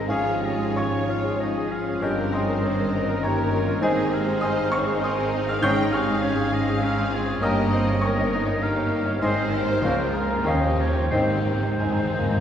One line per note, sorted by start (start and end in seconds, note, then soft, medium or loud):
0.00 1.96 G#1 soft
0.00 0.08 G#2 soft
0.00 1.97 G#2 soft
0.00 0.11 D#4 soft
0.00 0.11 G4 soft
0.00 0.11 G#4 soft
0.00 0.11 D#5 medium
0.00 0.10 G#5 soft
0.00 0.12 A#5 medium
0.00 0.11 C6 medium
0.07 1.97 G#2 soft
0.07 2.59 F3 soft
0.07 0.32 C#4 soft
0.07 0.74 C#4 soft
0.07 3.79 C#4 soft
0.07 1.05 F4 soft
0.07 0.76 G#4 medium
0.07 0.33 G#4 medium
0.07 0.42 C#5 soft
0.07 0.73 C#5 soft
0.07 0.39 F5 soft
0.07 0.46 F5 soft
0.07 0.73 F5 soft
0.07 0.73 G#5 medium
0.25 0.53 G#4 soft
0.42 0.59 G4 soft
0.42 1.38 C#5 soft
0.42 0.79 D#5 medium
0.59 0.85 G#4 soft
0.75 1.07 C#4 soft
0.75 1.02 C#5 soft
0.75 1.70 C#5 medium
0.75 1.11 C#5 medium
0.75 1.67 F5 soft
0.75 1.66 G#5 soft
0.75 1.66 C#6 medium
0.92 1.17 G#4 soft
1.06 1.38 F4 medium
1.06 1.33 F4 soft
1.06 1.39 F5 medium
1.24 1.49 G#4 medium
1.39 1.70 D#4 soft
1.39 2.01 G#4 soft
1.39 1.64 C#5 medium
1.39 1.73 D#5 medium
1.57 1.80 G#4 soft
1.71 2.01 C#4 medium
1.71 1.96 F4 soft
1.71 2.05 F5 medium
1.89 2.03 G#4 soft
2.00 3.78 G1 medium
2.00 3.79 G2 medium
2.00 3.22 C4 medium
2.00 2.23 C#4 medium
2.00 2.31 G4 medium
2.00 2.62 A#4 medium
2.00 2.23 A#4 medium
2.00 2.30 D#5 medium
2.00 2.34 G5 medium
2.19 2.42 A#4 soft
2.30 2.62 D#4 medium
2.30 3.18 C5 medium
2.30 3.26 D#5 medium
2.30 3.20 D#5 soft
2.30 3.20 G5 soft
2.30 3.19 C6 medium
2.35 2.48 G#4 soft
2.48 2.72 A#4 soft
2.63 5.46 D#3 medium
2.63 3.22 D#4 soft
2.63 2.93 C5 medium
2.63 2.88 C#5 medium
2.80 3.03 A#4 soft
2.93 3.18 D#4 medium
2.93 3.82 A#4 soft
3.08 3.32 A#4 medium
3.23 3.83 A#3 medium
3.23 3.54 G4 medium
3.23 3.82 A#4 medium
3.23 3.47 C#5 medium
3.23 3.84 C#5 medium
3.23 3.79 D#5 soft
3.23 3.79 G5 soft
3.23 3.79 A#5 medium
3.36 3.60 A#4 medium
3.52 3.76 D#4 medium
3.52 3.83 F4 medium
3.65 3.81 A#4 medium
3.81 7.38 G#1 medium
3.81 5.59 G#2 medium
3.81 7.39 G#2 medium
3.81 4.02 C4 medium
3.81 4.40 C4 medium
3.81 5.46 C4 medium
3.81 5.00 D#4 medium
3.81 4.03 G#4 medium
3.81 4.12 G#4 medium
3.81 4.42 G#4 medium
3.81 4.14 C5 medium
3.81 4.38 C5 medium
3.81 4.10 D#5 medium
3.81 4.38 D#5 medium
3.81 4.38 G#5 medium
3.96 4.20 G#4 medium
4.11 4.26 G4 soft
4.11 5.02 C5 medium
4.11 5.36 F5 medium
4.26 4.50 G#4 medium
4.41 5.00 C4 medium
4.41 4.66 C5 medium
4.41 4.72 D#5 medium
4.41 4.70 G#5 medium
4.41 4.70 C6 medium
4.41 4.69 D#6 medium
4.56 4.81 G#4 soft
4.70 4.95 D#4 medium
4.70 5.02 C#5 medium
4.70 5.00 C#6 medium
4.87 5.11 G#4 medium
5.01 6.23 C4 medium
5.01 5.61 D#4 medium
5.01 5.63 A#4 medium
5.01 5.26 C5 medium
5.01 5.47 D#5 medium
5.01 5.46 C6 medium
5.01 5.45 D#6 medium
5.05 5.46 G#5 medium
5.18 5.42 G#4 medium
5.33 5.57 D#4 medium
5.47 5.63 G#4 medium
5.47 5.63 F5 medium
5.47 5.63 F6 medium
5.62 7.38 G#2 medium
5.62 6.49 G#2 medium
5.62 5.84 G#3 medium
5.62 5.84 C#4 medium
5.62 5.85 C#4 medium
5.62 6.22 D#4 medium
5.62 5.84 G#4 medium
5.62 6.80 G#4 medium
5.62 5.92 C#5 medium
5.62 6.24 D#5 medium
5.62 5.94 G5 medium
5.62 5.92 C#6 medium
5.62 5.91 G6 medium
5.76 6.02 G#4 soft
5.92 6.08 G4 soft
5.92 7.40 F5 medium
5.92 7.39 G#5 soft
5.92 7.39 C#6 medium
5.92 7.38 F6 medium
6.07 6.32 G#4 medium
6.22 6.47 C#4 medium
6.22 6.83 C#4 medium
6.22 6.55 C#5 medium
6.36 6.61 G#4 medium
6.53 7.43 C4 medium
6.53 6.77 C#4 medium
6.53 6.85 D#5 medium
6.69 6.92 G#4 medium
6.82 7.07 C#4 medium
6.82 7.13 D#4 medium
6.82 7.41 G#4 medium
6.82 7.13 F5 medium
6.97 7.21 G#4 medium
7.11 7.37 C#4 medium
7.11 7.42 F4 medium
7.11 7.42 C#5 medium
7.28 7.43 G#4 medium
7.40 9.19 G1 medium
7.40 9.18 G2 medium
7.40 9.19 G2 medium
7.40 7.62 A#3 medium
7.40 8.00 A#3 medium
7.40 7.63 C#4 medium
7.40 7.71 G4 medium
7.40 7.63 A#4 medium
7.40 8.02 A#4 medium
7.40 8.00 D#5 medium
7.40 7.71 D#5 medium
7.40 8.64 D#5 medium
7.40 7.99 G5 medium
7.40 7.99 A#5 medium
7.40 7.99 D#6 medium
7.59 7.82 C#5 medium
7.71 8.01 C4 medium
7.71 7.88 C5 soft
7.90 8.13 C#5 medium
8.01 8.61 A#3 medium
8.01 8.32 C#4 medium
8.01 8.61 A#4 medium
8.01 8.28 A#4 medium
8.01 8.32 C#5 medium
8.01 8.30 G5 medium
8.01 8.30 A#5 soft
8.01 8.29 C#6 medium
8.21 8.43 C#5 medium
8.32 8.62 D#4 medium
8.32 8.57 D#4 medium
8.46 8.70 C#5 medium
8.62 9.21 A#3 medium
8.62 9.21 D#4 medium
8.62 9.22 G4 medium
8.62 8.86 A#4 medium
8.62 9.22 F5 medium
8.76 9.01 C#5 medium
8.91 9.16 D#4 medium
9.06 9.22 C#5 medium
9.20 9.80 G#1 medium
9.20 9.79 G#2 medium
9.20 9.82 G#2 medium
9.20 9.80 D#3 medium
9.20 9.43 G#3 medium
9.20 9.44 C4 medium
9.20 9.80 C4 medium
9.20 9.51 G#4 medium
9.20 10.09 C5 medium
9.20 10.10 D#5 medium
9.20 9.56 D#5 medium
9.20 9.51 D#5 medium
9.20 10.10 G#5 medium
9.20 10.10 C6 medium
9.25 9.45 C5 medium
9.36 9.61 C5 medium
9.53 9.84 G4 medium
9.53 9.68 A#4 soft
9.53 9.87 F5 medium
9.67 9.83 C5 medium
9.80 10.43 C#2 medium
9.80 10.45 C#2 medium
9.80 10.46 C#2 medium
9.80 10.03 F3 medium
9.80 10.03 A#3 medium
9.80 10.46 F4 medium
9.80 10.05 A#4 medium
9.80 10.12 F5 medium
9.84 10.45 F3 medium
9.84 10.46 A#3 medium
9.84 10.06 C#4 medium
9.84 10.18 G5 medium
9.99 10.24 A#4 soft
10.13 10.29 G#4 soft
10.13 10.45 A#4 medium
10.13 10.44 A#5 medium
10.17 10.50 F5 medium
10.30 10.46 A#4 medium
10.44 11.10 D#2 medium
10.44 11.11 D#2 medium
10.44 11.12 D#2 medium
10.44 10.68 D#3 medium
10.44 11.11 F3 medium
10.44 10.68 C#4 medium
10.44 11.13 C#4 medium
10.44 10.69 C#4 soft
10.44 11.12 D#4 medium
10.44 11.10 G4 medium
10.44 10.69 C5 soft
10.44 11.09 C#5 soft
10.44 11.09 D#5 medium
10.44 10.77 F5 medium
10.44 11.08 G5 medium
10.48 10.83 D#5 medium
10.62 10.89 C5 medium
10.79 10.96 A#4 soft
10.79 11.13 C#5 medium
10.96 11.10 C5 soft
11.11 12.40 G#1 medium
11.11 11.19 G#2 soft
11.11 12.40 G#2 medium
11.11 12.40 G#2 soft
11.11 11.79 D#3 soft
11.11 11.37 D#3 soft
11.11 11.37 C4 medium
11.11 11.79 C4 medium
11.11 11.37 C4 soft
11.11 11.81 D#4 soft
11.11 11.79 G4 medium
11.11 11.36 C5 medium
11.11 11.30 C5 soft
11.11 12.40 C5 soft
11.11 11.77 D#5 medium
11.11 11.45 D#5 soft
11.11 11.77 G5 medium
11.20 11.27 G#2 soft
11.28 11.34 G#2 soft
11.28 11.59 C5 soft
11.36 11.43 G#2 soft
11.44 11.53 G#2 soft
11.44 11.65 A#4 soft
11.54 11.59 G#2 soft
11.60 11.69 G#2 soft
11.60 11.80 C5 soft
11.70 11.77 G#2 soft
11.78 11.86 G#2 soft
11.78 12.40 D#3 soft
11.78 12.40 C4 soft
11.78 12.08 D#4 soft
11.78 12.40 G#4 soft
11.78 11.97 C5 soft
11.78 12.40 D#5 soft
11.78 12.40 G#5 medium
11.82 12.20 C4 medium
11.82 12.40 D#4 medium
11.87 11.94 G#2 soft
11.96 12.03 G#2 soft
11.96 12.26 C5 soft
12.05 12.11 G#2 soft
12.13 12.20 G#2 soft
12.13 12.40 D#4 soft
12.18 12.28 G#2 medium
12.18 12.40 A#3 medium
12.30 12.35 G#2 medium
12.30 12.40 C5 soft
12.37 12.40 G#2 medium